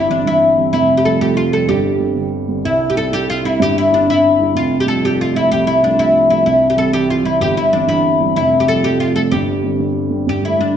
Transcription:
Already playing: G1 E4
0.10 E3 G3 C4 D4
0.26 E3 G3 C4 E4
0.58 E3 G3 C4
0.73 F1 F2 E4
0.97 G4
1.05 F3 G3 A3 A4
1.21 F3 G3 A3 G4
1.37 F4
1.53 F3 G3 A3 A4
1.68 G1 G2 G4
2.00 D3 G3 C4
2.16 D3 G3 C4
2.49 D3 G3 C4
2.64 C2 C3 E4
2.90 G4
2.95 G3 C4 E4 A4
3.11 G3 C4 E4 G4
3.30 F4
3.43 G3 C4 E4
3.60 G1 G2 G4
3.78 E4
3.91 G3 C4 D4 E4
4.07 G3 C4 E4
4.39 G3 C4 E4
4.55 F1 F2 F4
4.80 G4
4.86 F3 G3 A3 A4
5.03 F3 G3 A3 G4
5.21 F4
5.34 F3 G3 A3 E4
5.51 C2 G4
5.67 E4
5.83 F3 G3 A3 D4
5.98 F3 G3 A3 E4
6.29 F3 G3 A3 E4
6.45 C2 E4
6.70 G4
6.76 E3 G3 C4 A4
6.92 E3 G3 C4 G4
7.10 F4
7.24 E3 G3 C4 E4
7.40 G1 G4
7.57 E4
7.73 E3 G3 C4 D4
7.87 E3 G3 C4 E4
8.20 E3 G3 C4
8.36 F1 F2 E4
8.60 G4
8.68 F3 G3 A3 A4
8.84 F3 G3 A3 G4
9.00 F4
9.16 F3 G3 A3 A4
9.32 G1 G2 G4
9.64 D3 G3 C4
9.79 D3 G3 C4
10.11 D3 G3 C4
10.27 G2 G4
10.42 D3 G3 A3 E4
10.59 D3 G3 A3 D4

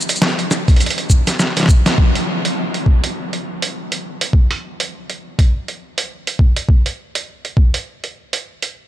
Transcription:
0.01 shaker
0.09 closed hi-hat, shaker
0.12 shaker
0.15 shaker
0.18 shaker
0.22 snare, shaker
0.31 shaker
0.39 closed hi-hat, shaker
0.51 snare, shaker
0.68 kick, closed hi-hat, shaker
0.71 closed hi-hat
0.76 closed hi-hat
0.80 closed hi-hat, shaker
0.86 closed hi-hat
0.90 closed hi-hat
0.98 closed hi-hat, shaker
1.10 kick, shaker
1.27 snare, closed hi-hat, shaker
1.39 snare, shaker
1.57 snare, closed hi-hat, shaker
1.60 snare
1.63 snare
1.66 kick, snare, shaker
1.86 snare, closed hi-hat, shaker
1.98 kick
2.15 closed hi-hat
2.45 closed hi-hat
2.74 closed hi-hat
2.86 kick
3.04 closed hi-hat
3.33 closed hi-hat
3.62 closed hi-hat
3.92 closed hi-hat
4.21 closed hi-hat
4.33 kick
4.51 closed hi-hat
4.80 closed hi-hat
5.10 closed hi-hat
5.39 kick, closed hi-hat
5.68 closed hi-hat
5.98 closed hi-hat
6.27 closed hi-hat
6.39 kick
6.56 closed hi-hat
6.69 kick
6.86 closed hi-hat
7.15 closed hi-hat
7.45 closed hi-hat
7.57 kick
7.74 closed hi-hat
8.04 closed hi-hat
8.33 closed hi-hat
8.62 closed hi-hat

